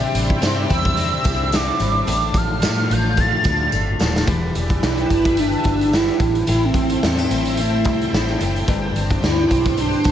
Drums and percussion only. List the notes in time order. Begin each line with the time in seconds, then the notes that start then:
0.15 closed hi-hat, tambourine
0.30 kick
0.42 snare, closed hi-hat, tambourine
0.70 kick, closed hi-hat, tambourine
0.85 kick
0.97 closed hi-hat, tambourine
1.24 kick, closed hi-hat, tambourine
1.52 snare, closed hi-hat, tambourine
1.80 closed hi-hat, tambourine
2.08 closed hi-hat, tambourine
2.34 kick, closed hi-hat, tambourine
2.62 snare, closed hi-hat, tambourine
2.91 closed hi-hat
3.17 kick, closed hi-hat
3.44 kick, snare, closed hi-hat, tambourine
3.72 tambourine
3.99 snare, tambourine
4.16 snare
4.28 kick, closed hi-hat
4.55 closed hi-hat
4.70 kick, closed hi-hat
4.83 snare
4.97 closed hi-hat
5.10 kick, closed hi-hat
5.25 kick, closed hi-hat
5.37 closed hi-hat
5.52 closed hi-hat
5.64 kick, closed hi-hat
5.81 closed hi-hat
5.93 snare
6.08 closed hi-hat
6.20 kick, closed hi-hat
6.35 closed hi-hat
6.47 closed hi-hat
6.74 kick, closed hi-hat
6.90 closed hi-hat
7.03 snare
7.17 closed hi-hat
7.31 closed hi-hat
7.45 closed hi-hat
7.57 closed hi-hat
7.85 kick, snare, closed hi-hat
8.02 closed hi-hat
8.14 snare
8.29 closed hi-hat
8.41 closed hi-hat
8.56 closed hi-hat
8.68 kick, closed hi-hat
8.96 closed hi-hat
9.10 kick, closed hi-hat
9.24 snare
9.51 kick, closed hi-hat
9.66 kick, closed hi-hat
9.77 closed hi-hat
9.92 closed hi-hat
10.04 kick, snare, closed hi-hat